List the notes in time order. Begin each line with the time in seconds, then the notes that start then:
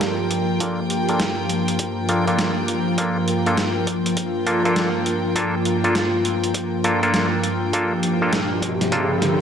Already playing: G2 F3 A#3 D4 F4 G4 A4 A#4 G5
0.01 snare, closed hi-hat
0.31 closed hi-hat
0.60 A#3 D4 F4 A4, kick, closed hi-hat
0.90 closed hi-hat
1.09 A#3 D4 F4 A4, closed hi-hat
1.20 snare, closed hi-hat
1.49 closed hi-hat
1.68 closed hi-hat
1.79 kick, closed hi-hat
2.09 A#3 D4 F4 A4, closed hi-hat
2.27 A#3 D4 F4 A4, closed hi-hat
2.39 snare, closed hi-hat
2.68 closed hi-hat
2.98 A#3 D4 F4 A4, kick, closed hi-hat
3.28 closed hi-hat
3.46 A#3 D4 F4 A4, closed hi-hat
3.57 snare, closed hi-hat
3.87 kick, closed hi-hat
4.06 closed hi-hat
4.17 kick, closed hi-hat
4.46 A#3 D4 F4 A4, closed hi-hat
4.65 A#3 D4 F4 A4, closed hi-hat
4.76 snare, closed hi-hat
5.06 closed hi-hat
5.36 A#3 D4 F4 A4, kick, closed hi-hat
5.65 closed hi-hat
5.84 A#3 D4 F4 A4, closed hi-hat
5.95 snare, closed hi-hat
6.25 closed hi-hat
6.44 closed hi-hat
6.54 kick, closed hi-hat
6.84 A#3 D4 F4 A4, closed hi-hat
7.03 A#3 D4 F4 A4, closed hi-hat
7.14 snare, closed hi-hat
7.43 closed hi-hat
7.73 A#3 D4 F4 G4 A4, kick, closed hi-hat, riser
8.03 closed hi-hat
8.22 A#3 D4 F4 A4
8.33 snare, closed hi-hat
8.62 kick, closed hi-hat
8.81 snare, closed hi-hat
8.92 A#3 D4 F4 A4, kick, closed hi-hat
9.22 snare, closed hi-hat